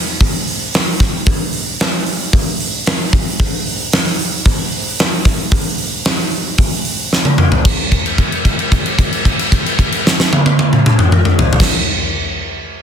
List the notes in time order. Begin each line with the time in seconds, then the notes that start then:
0.21 kick, open hi-hat
0.47 open hi-hat
0.74 snare, open hi-hat
1.00 kick, snare, open hi-hat
1.26 kick, open hi-hat
1.53 open hi-hat
1.80 snare, open hi-hat
2.06 open hi-hat
2.33 kick, open hi-hat
2.60 open hi-hat
2.86 snare, open hi-hat
3.13 kick, open hi-hat
3.40 kick, open hi-hat
3.66 open hi-hat
3.93 snare, open hi-hat
4.07 snare
4.19 open hi-hat
4.45 kick, open hi-hat
4.72 open hi-hat
4.99 snare, open hi-hat
5.25 kick, snare, open hi-hat
5.51 kick, open hi-hat
5.78 open hi-hat
6.06 snare
6.19 snare
6.32 open hi-hat
6.58 kick, open hi-hat
6.85 open hi-hat
7.13 snare
7.25 high tom
7.38 mid tom
7.52 floor tom
7.65 kick, crash
7.92 kick, crash
8.06 crash
8.18 kick, crash
8.32 crash
8.45 kick, crash
8.59 crash
8.72 kick, crash
8.86 crash
8.99 kick, crash
9.12 crash
9.25 kick, crash
9.39 crash
9.52 kick, crash
9.66 crash
9.79 kick, crash
9.92 crash
10.07 snare
10.20 snare
10.33 high tom
10.46 high tom
10.59 high tom
10.73 mid tom
10.86 mid tom
10.99 mid tom
11.12 mid tom
11.25 mid tom
11.39 floor tom
11.53 floor tom
11.60 kick, snare, crash